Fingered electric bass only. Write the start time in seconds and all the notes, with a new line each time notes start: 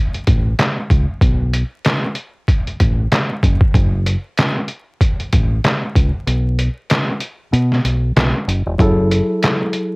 0.27 A1
0.90 C#2
1.21 B1
2.80 A1
3.43 F#1
3.74 F#1
5.33 A1
5.95 C#2
6.27 B1
7.53 B2
7.85 B1
8.16 B1
8.48 F#1
8.66 E1
8.79 F#1